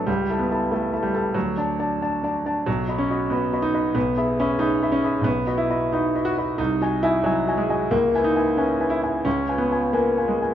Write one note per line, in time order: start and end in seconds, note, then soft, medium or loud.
0.07 0.28 C#2 medium
0.07 0.39 G3 medium
0.30 0.48 E4 soft
0.30 0.49 A4 soft
0.30 0.49 A5 soft
0.39 0.71 B3 medium
0.51 0.70 E4 soft
0.51 0.70 A4 soft
0.51 0.70 A5 soft
0.71 1.03 A3 medium
0.71 0.91 E4 soft
0.71 0.91 A4 soft
0.71 0.91 A5 soft
0.93 1.12 E4 soft
0.93 1.12 A4 soft
0.93 1.12 A5 soft
1.03 1.35 G3 medium
1.14 1.33 E4 soft
1.14 1.33 A4 soft
1.14 1.33 A5 soft
1.34 1.56 D2 soft
1.34 2.00 F#3 medium
1.57 1.77 D4 soft
1.57 1.77 D5 soft
1.57 1.77 A5 soft
1.79 1.99 D4 soft
1.79 1.99 D5 soft
1.79 1.99 A5 soft
2.01 2.21 D4 soft
2.01 2.22 D5 soft
2.01 2.22 A5 soft
2.23 2.43 D4 soft
2.23 2.43 D5 soft
2.23 2.44 A5 soft
2.45 2.65 D4 soft
2.45 2.65 D5 soft
2.45 2.66 A5 soft
2.66 2.88 B1 medium
2.66 2.99 F#3 medium
2.88 3.07 F#4 soft
2.88 3.08 D#5 soft
2.88 3.08 B5 soft
2.98 3.30 C#4 medium
3.10 3.29 F#4 soft
3.10 3.29 D#5 soft
3.10 3.29 B5 soft
3.30 3.62 B3 medium
3.30 3.50 F#4 soft
3.30 3.50 D#5 soft
3.30 3.51 B5 soft
3.53 3.72 F#4 soft
3.53 3.72 D#5 soft
3.53 3.72 B5 soft
3.62 3.95 D#4 medium
3.74 3.93 F#4 soft
3.74 3.93 D#5 soft
3.74 3.94 B5 soft
3.95 4.17 B1 medium
3.95 4.39 B3 medium
4.17 4.37 G#4 soft
4.17 4.37 E5 soft
4.17 4.37 B5 soft
4.40 4.61 C#4 medium
4.40 4.59 G#4 soft
4.40 4.59 E5 soft
4.40 4.59 B5 soft
4.59 4.92 D#4 medium
4.59 4.80 G#4 soft
4.59 4.80 E5 soft
4.59 4.80 B5 soft
4.82 5.02 G#4 soft
4.82 5.02 E5 soft
4.82 5.02 B5 soft
4.92 5.25 C#4 medium
5.04 5.23 G#4 soft
5.04 5.24 E5 soft
5.04 5.24 B5 soft
5.22 5.45 B1 medium
5.22 5.58 B3 medium
5.47 5.68 F#4 soft
5.47 5.68 D#5 soft
5.47 5.68 B5 soft
5.58 5.92 E4 medium
5.70 5.90 F#4 soft
5.70 5.91 D#5 soft
5.70 5.91 B5 soft
5.92 6.26 D#4 medium
5.92 6.13 F#4 soft
5.92 6.13 D#5 soft
5.92 6.13 B5 soft
6.15 6.23 F#4 soft
6.15 6.35 D#5 soft
6.15 6.35 B5 soft
6.25 6.36 F#4 medium
6.38 6.57 F#4 soft
6.38 6.57 D#5 soft
6.38 6.57 B5 soft
6.58 6.80 C2 medium
6.58 7.03 D#4 medium
6.81 7.01 F#4 soft
6.81 7.01 D#5 soft
6.81 7.02 G#5 soft
7.03 7.25 E4 medium
7.03 7.23 F#4 soft
7.03 7.24 D#5 soft
7.03 7.24 G#5 soft
7.24 7.58 F#3 medium
7.24 7.45 F#4 soft
7.24 7.46 D#5 soft
7.24 7.46 G#5 soft
7.48 7.68 F#4 soft
7.48 7.68 D#5 soft
7.48 7.68 G#5 soft
7.58 7.92 G#3 medium
7.69 7.90 F#4 soft
7.69 7.90 D#5 soft
7.69 7.90 G#5 soft
7.91 8.13 C#2 medium
7.91 8.25 A#3 medium
8.14 8.34 E4 soft
8.14 8.34 B4 soft
8.14 8.35 G#5 soft
8.24 8.58 D#4 medium
8.36 8.56 E4 soft
8.36 8.56 B4 soft
8.36 8.56 G#5 soft
8.57 8.91 C#4 medium
8.57 8.78 E4 soft
8.57 8.78 B4 soft
8.57 8.78 G#5 soft
8.80 8.88 E4 soft
8.80 9.00 B4 soft
8.80 9.01 G#5 soft
8.90 9.01 E4 medium
9.02 9.23 E4 soft
9.02 9.23 B4 soft
9.02 9.23 G#5 soft
9.25 9.48 C#2 medium
9.25 9.59 C#4 medium
9.48 9.69 F4 soft
9.48 9.69 B4 soft
9.48 9.69 G#5 soft
9.58 9.94 B3 medium
9.71 9.92 F4 soft
9.71 9.92 B4 soft
9.71 9.93 G#5 soft
9.93 10.29 A#3 medium
9.93 10.15 F4 soft
9.93 10.15 B4 soft
9.93 10.16 G#5 soft
10.17 10.39 F4 soft
10.17 10.40 B4 soft
10.17 10.40 G#5 soft
10.28 10.54 G#3 medium
10.41 10.54 F4 soft
10.41 10.54 B4 soft
10.41 10.54 G#5 soft